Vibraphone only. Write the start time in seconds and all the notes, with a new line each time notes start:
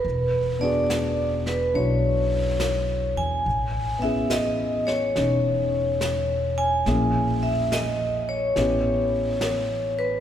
Already playing: B4
0.61 D5
1.47 B4
1.75 C#5
3.17 G#5
4.02 E5
4.31 D#5
4.87 C#5
6.58 G#5
7.43 E5
7.72 D#5
8.29 C#5
9.99 B4